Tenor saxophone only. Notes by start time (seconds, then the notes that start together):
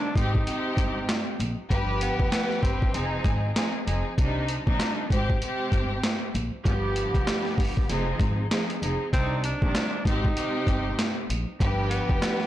Already playing: D4
0.16 D#4
2.02 B3
2.32 B3
2.63 C4
9.13 C4
9.45 D4
10.05 D#4
11.90 B3
12.22 B3